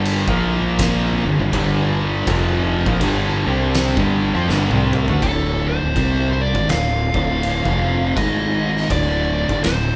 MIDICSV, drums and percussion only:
0, 0, Header, 1, 2, 480
1, 0, Start_track
1, 0, Key_signature, -1, "minor"
1, 0, Tempo, 737101
1, 1480, Time_signature, 4, 2, 24, 8
1, 6485, End_track
2, 0, Start_track
2, 0, Title_t, "Drums"
2, 35, Note_on_c, 9, 49, 60
2, 100, Note_off_c, 9, 49, 0
2, 180, Note_on_c, 9, 36, 104
2, 246, Note_off_c, 9, 36, 0
2, 512, Note_on_c, 9, 49, 60
2, 516, Note_on_c, 9, 36, 113
2, 518, Note_on_c, 9, 38, 118
2, 577, Note_off_c, 9, 49, 0
2, 581, Note_off_c, 9, 36, 0
2, 583, Note_off_c, 9, 38, 0
2, 997, Note_on_c, 9, 36, 102
2, 998, Note_on_c, 9, 49, 66
2, 1063, Note_off_c, 9, 36, 0
2, 1063, Note_off_c, 9, 49, 0
2, 1479, Note_on_c, 9, 36, 114
2, 1480, Note_on_c, 9, 49, 68
2, 1545, Note_off_c, 9, 36, 0
2, 1545, Note_off_c, 9, 49, 0
2, 1865, Note_on_c, 9, 36, 112
2, 1930, Note_off_c, 9, 36, 0
2, 1960, Note_on_c, 9, 36, 110
2, 1960, Note_on_c, 9, 49, 68
2, 2025, Note_off_c, 9, 36, 0
2, 2025, Note_off_c, 9, 49, 0
2, 2438, Note_on_c, 9, 49, 72
2, 2444, Note_on_c, 9, 38, 119
2, 2503, Note_off_c, 9, 49, 0
2, 2509, Note_off_c, 9, 38, 0
2, 2586, Note_on_c, 9, 36, 111
2, 2651, Note_off_c, 9, 36, 0
2, 2926, Note_on_c, 9, 38, 67
2, 2991, Note_off_c, 9, 38, 0
2, 3066, Note_on_c, 9, 48, 70
2, 3131, Note_off_c, 9, 48, 0
2, 3211, Note_on_c, 9, 45, 90
2, 3276, Note_off_c, 9, 45, 0
2, 3308, Note_on_c, 9, 43, 85
2, 3373, Note_off_c, 9, 43, 0
2, 3401, Note_on_c, 9, 36, 113
2, 3403, Note_on_c, 9, 49, 55
2, 3466, Note_off_c, 9, 36, 0
2, 3468, Note_off_c, 9, 49, 0
2, 3880, Note_on_c, 9, 36, 104
2, 3884, Note_on_c, 9, 49, 50
2, 3945, Note_off_c, 9, 36, 0
2, 3949, Note_off_c, 9, 49, 0
2, 4265, Note_on_c, 9, 36, 113
2, 4330, Note_off_c, 9, 36, 0
2, 4357, Note_on_c, 9, 49, 60
2, 4363, Note_on_c, 9, 38, 109
2, 4422, Note_off_c, 9, 49, 0
2, 4428, Note_off_c, 9, 38, 0
2, 4651, Note_on_c, 9, 36, 106
2, 4716, Note_off_c, 9, 36, 0
2, 4839, Note_on_c, 9, 49, 58
2, 4904, Note_off_c, 9, 49, 0
2, 4985, Note_on_c, 9, 36, 100
2, 5050, Note_off_c, 9, 36, 0
2, 5318, Note_on_c, 9, 36, 107
2, 5320, Note_on_c, 9, 49, 64
2, 5384, Note_off_c, 9, 36, 0
2, 5386, Note_off_c, 9, 49, 0
2, 5711, Note_on_c, 9, 38, 32
2, 5776, Note_off_c, 9, 38, 0
2, 5797, Note_on_c, 9, 36, 104
2, 5799, Note_on_c, 9, 49, 60
2, 5862, Note_off_c, 9, 36, 0
2, 5864, Note_off_c, 9, 49, 0
2, 6182, Note_on_c, 9, 36, 107
2, 6247, Note_off_c, 9, 36, 0
2, 6276, Note_on_c, 9, 49, 61
2, 6281, Note_on_c, 9, 38, 117
2, 6341, Note_off_c, 9, 49, 0
2, 6347, Note_off_c, 9, 38, 0
2, 6485, End_track
0, 0, End_of_file